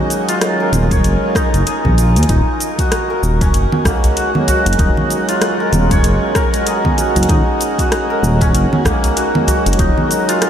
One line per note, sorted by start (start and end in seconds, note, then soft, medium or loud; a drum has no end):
0.00 0.88 F#3 loud
0.00 0.86 G#3 medium
0.00 3.14 A#3 medium
0.00 0.87 C#4 medium
0.00 2.28 C#4 loud
0.00 1.35 D#4 loud
0.00 0.35 F#4 loud
0.00 0.60 A#4 medium
0.10 closed hi-hat soft
0.10 cabasa medium
0.29 1.97 F4 loud
0.29 closed hi-hat soft
0.29 cabasa soft
0.41 cross-stick medium
0.41 closed hi-hat medium
0.41 cabasa soft
0.60 3.10 A#4 medium
0.73 1.05 D#1 medium
0.73 closed hi-hat soft
0.73 low conga medium
0.73 cabasa medium
0.90 1.50 F#3 loud
0.90 1.49 G#3 loud
0.90 1.49 C#4 medium
0.90 3.46 C#5 loud
0.90 kick loud
0.90 closed hi-hat soft
0.90 cabasa soft
1.04 1.16 F#1 medium
1.04 closed hi-hat medium
1.04 cabasa soft
1.35 2.29 D#4 loud
1.35 kick loud
1.35 cross-stick medium
1.35 closed hi-hat soft
1.35 cabasa medium
1.54 1.62 F#1 medium
1.54 closed hi-hat soft
1.54 cabasa soft
1.66 4.70 G#4 medium
1.66 closed hi-hat medium
1.66 cabasa soft
1.85 2.18 A#1 medium
1.85 kick medium
1.85 low conga medium
1.98 2.85 F4 medium
1.98 closed hi-hat soft
1.98 cabasa medium
2.16 2.25 D#2 medium
2.16 closed hi-hat soft
2.16 cabasa soft
2.23 closed hi-hat soft
2.29 2.41 D#1 loud
2.29 4.79 D#4 medium
2.29 kick loud
2.29 closed hi-hat medium
2.29 cabasa soft
2.60 closed hi-hat soft
2.60 cabasa medium
2.79 4.16 F#4 medium
2.79 kick medium
2.79 closed hi-hat soft
2.79 cabasa soft
2.92 cross-stick medium
2.92 closed hi-hat medium
2.92 cabasa soft
3.10 5.60 A#4 medium
3.23 3.55 D#1 medium
3.23 cabasa medium
3.41 7.28 C#4 loud
3.41 kick loud
3.41 closed hi-hat soft
3.41 cabasa soft
3.54 3.66 F#1 medium
3.54 closed hi-hat medium
3.54 cabasa soft
3.72 low conga medium
3.84 4.30 G#3 medium
3.84 8.14 A#3 medium
3.84 4.31 C#4 medium
3.84 4.31 F#4 medium
3.84 kick loud
3.84 cross-stick medium
3.84 closed hi-hat soft
3.84 udu loud
3.84 cabasa medium
4.04 closed hi-hat soft
4.04 udu loud
4.04 cabasa soft
4.17 4.47 F#4 medium
4.17 closed hi-hat medium
4.17 cabasa soft
4.33 5.86 G#3 medium
4.33 5.87 C#4 medium
4.33 low conga medium
4.37 5.88 F#3 loud
4.48 5.35 F#4 medium
4.48 closed hi-hat soft
4.48 udu medium
4.48 cabasa medium
4.66 4.75 F#1 loud
4.66 closed hi-hat soft
4.66 cabasa soft
4.73 closed hi-hat medium
4.79 4.91 D#1 loud
4.79 7.29 D#4 loud
4.79 kick loud
4.79 closed hi-hat medium
4.79 udu medium
4.79 cabasa soft
4.97 low conga medium
5.10 closed hi-hat soft
5.10 cabasa medium
5.29 7.04 F4 loud
5.29 closed hi-hat soft
5.29 cabasa soft
5.42 cross-stick medium
5.42 closed hi-hat medium
5.42 cabasa soft
5.60 6.35 A#4 medium
5.72 6.05 D#1 medium
5.72 closed hi-hat soft
5.72 low conga medium
5.72 cabasa medium
5.90 6.50 F#3 loud
5.90 6.49 G#3 loud
5.90 6.49 C#4 medium
5.90 8.46 C#5 loud
5.90 kick loud
5.90 closed hi-hat soft
5.90 cabasa soft
6.04 6.16 F#1 loud
6.04 closed hi-hat medium
6.04 cabasa soft
6.35 8.10 A#4 loud
6.35 kick loud
6.35 cross-stick medium
6.35 closed hi-hat soft
6.35 cabasa medium
6.51 8.81 G#3 medium
6.51 8.82 C#4 medium
6.51 closed hi-hat soft
6.51 cabasa soft
6.56 8.83 F#4 loud
6.67 9.70 G#4 medium
6.67 closed hi-hat medium
6.67 cabasa soft
6.85 kick medium
6.85 low conga medium
6.98 7.79 F#4 medium
6.98 closed hi-hat soft
6.98 cabasa medium
7.16 7.25 F#1 loud
7.16 closed hi-hat soft
7.16 udu medium
7.16 cabasa soft
7.23 closed hi-hat medium
7.29 7.41 D#1 loud
7.29 9.79 D#4 medium
7.29 kick loud
7.29 closed hi-hat medium
7.29 cabasa soft
7.61 closed hi-hat soft
7.61 cabasa medium
7.79 9.16 F#4 medium
7.79 kick medium
7.79 closed hi-hat soft
7.79 cabasa soft
7.92 cross-stick medium
7.92 closed hi-hat medium
7.92 cabasa soft
8.10 10.50 A#4 medium
8.23 8.55 D#1 medium
8.23 cabasa medium
8.41 10.50 C#4 loud
8.41 kick loud
8.41 closed hi-hat soft
8.41 cabasa soft
8.54 8.66 F#1 medium
8.54 closed hi-hat medium
8.54 cabasa soft
8.73 low conga medium
8.84 9.30 G#3 medium
8.84 10.50 A#3 medium
8.84 9.31 C#4 medium
8.84 9.31 F#4 medium
8.84 kick loud
8.84 cross-stick medium
8.84 closed hi-hat soft
8.84 udu medium
8.84 cabasa medium
9.04 closed hi-hat soft
9.04 udu medium
9.04 cabasa soft
9.16 9.47 F#4 medium
9.16 closed hi-hat medium
9.16 cabasa soft
9.33 10.50 F#3 loud
9.33 10.50 G#3 medium
9.33 10.50 C#4 medium
9.33 low conga medium
9.47 10.35 F#4 loud
9.47 closed hi-hat soft
9.47 udu medium
9.47 cabasa medium
9.66 9.75 F#1 loud
9.66 closed hi-hat soft
9.66 cabasa soft
9.73 closed hi-hat medium
9.79 9.91 D#1 loud
9.79 10.50 D#4 loud
9.79 kick loud
9.79 closed hi-hat medium
9.79 udu medium
9.79 cabasa soft
9.98 low conga medium
10.11 closed hi-hat soft
10.11 cabasa medium
10.29 10.50 F4 loud
10.29 closed hi-hat soft
10.29 cabasa soft
10.42 cross-stick medium
10.42 closed hi-hat medium
10.42 cabasa soft